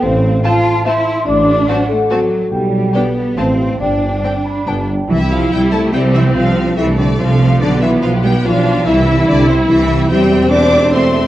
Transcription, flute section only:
\new Staff \with { instrumentName = "Flute section" } { \time 3/4 \key c \major \tempo 4 = 144 f''4 a''4 c'''4 | d'''4 fis''2 | g''4 d''4 f''4 | g''4 g''8 b''8 a''8 g''8 |
r2. | r2. | r2. | r2. |
r2. | }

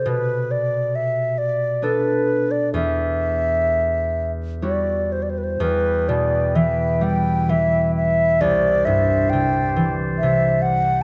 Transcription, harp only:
\new Staff \with { instrumentName = "Harp" } { \clef bass \time 3/4 \key e \minor \tempo 4 = 66 b,2 <b d' a'>4 | e,2 <g e' fis'>4 | e,8 b,8 e8 g8 e4 | c,8 g,8 c8 e8 c4 | }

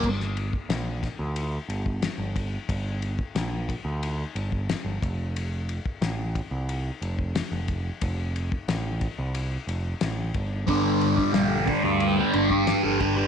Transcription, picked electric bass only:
\new Staff \with { instrumentName = "Picked electric bass" } { \clef bass \time 4/4 \key g \minor \tempo 4 = 90 g,,4 bes,,8. d,8. g,,8. g,,8. | g,,4 bes,,8. d,8. g,,8. g,,16 f,,8~ | f,,4 a,,8. c,8. f,,8. f,,8. | f,,4 a,,8. c,8. f,,8 a,,8 g,,8 |
g,,4 bes,,8. d,8. g,,8. g,,8. | }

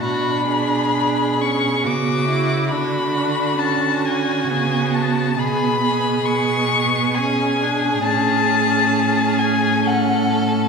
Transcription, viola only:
\new Staff \with { instrumentName = "Viola" } { \time 3/4 \key b \dorian \tempo 4 = 67 d'4 d'8 cis'8 b8 e'8 | d'4 cis'4 b4 | b4 b4 cis'8 d'8 | cis'2. | }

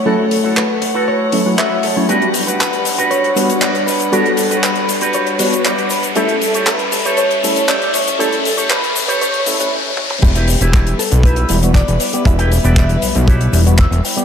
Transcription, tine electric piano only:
\new Staff \with { instrumentName = "Tine electric piano" } { \time 4/4 \key e \dorian \tempo 4 = 118 <fis a cis' e' a'>16 r2 r16 <fis a cis' e' a'>16 <fis a cis' e' b'>16 r8. <fis a cis' e' cis''>16 | <g b d' fis' b'>16 r2 r16 <g b d' fis' b'>16 r4 r16 | <g b d' fis' b'>16 r2 r16 <g b d' fis' b'>16 r4 r16 | <g a cis' e' a'>16 r2 r16 <g a cis' e' a'>16 r4 r16 |
<g a cis' e' a'>16 r2 r16 <g a cis' e' a'>16 <g a cis' e' b'>16 r4 | <g b e'>16 r2 r16 <g b e'>16 <g b fis'>16 r8. <g b g'>16 | <g b e'>16 r2 r16 <g b e'>16 <g b fis'>16 r8. <g b g'>16 | }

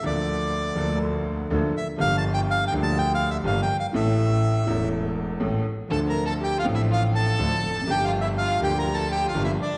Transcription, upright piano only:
\new Staff \with { instrumentName = "Upright piano" } { \clef bass \time 4/4 \key g \dorian \tempo 4 = 122 <d, d f bes d' a'>4. <d, d f bes d' a'>4. <d, d f bes d' a'>8 r8 | <g,, g, f bes d' g'>4. <d, d f bes d' g'>4. <g,, g, f bes d' g'>8 r8 | <a,, a, e a cis' a'>4. <e,, e, e a cis' a'>4. <a,, a, e a cis' a'>8 r8 | <d, d f c' d' a'>4. <a,, a, f c' d' a'>4. <d, d f c' d' a'>8 r32 e,32 f,32 fis,32 |
<g,, g, f bes d' g'>4. <d, d f bes d' g'>4. <g,, g, f bes d' g'>8 r8 | }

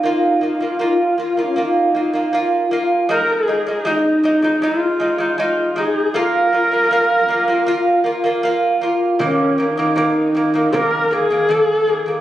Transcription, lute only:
\new Staff \with { instrumentName = "Lute" } { \time 4/4 \tempo 4 = 79 <bes f'>8 <bes f'>16 <bes f'>16 <bes f'>8 <bes f'>16 <bes f'>16 <bes f'>8 <bes f'>16 <bes f'>16 <bes f'>8 <bes f'>8 | <aes ees'>8 <aes ees'>16 <aes ees'>16 <aes ees'>8 <aes ees'>16 <aes ees'>16 <aes ees'>8 <aes ees'>16 <aes ees'>16 <aes ees'>8 <aes ees'>8 | <bes f'>8 <bes f'>16 <bes f'>16 <bes f'>8 <bes f'>16 <bes f'>16 <bes f'>8 <bes f'>16 <bes f'>16 <bes f'>8 <bes f'>8 | <ees bes>8 <ees bes>16 <ees bes>16 <ees bes>8 <ees bes>16 <ees bes>16 <ees bes>8 <ees bes>16 <ees bes>16 <ees bes>8 <ees bes>16 <ees bes>16 | }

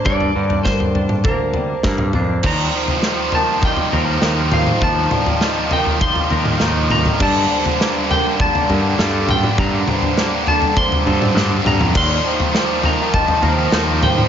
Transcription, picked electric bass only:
\new Staff \with { instrumentName = "Picked electric bass" } { \clef bass \time 4/4 \key ees \lydian \tempo 4 = 101 g,8 g,4. d,4 g,8 f,8 | ees,8 r2 ees,8 ees,4 | ees,8 r2 ees,8 ees,4 | g,8 r2 g,8 g,4 |
g,8 r2 g,8 g,8 g,16 f,16 | ees,8 r2 ees,8 ees,4 | }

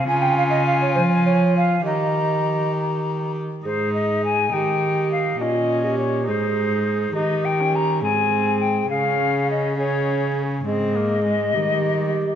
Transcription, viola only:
\new Staff \with { instrumentName = "Viola" } { \time 6/8 \key ees \mixolydian \tempo 4. = 68 f'2. | g'2~ g'8. r16 | ees'4. ees'4. | des'4. ees'4. |
ees'8. des'8. c'4. | des'4. des'4. | c'8 bes8 aes8 g4. | }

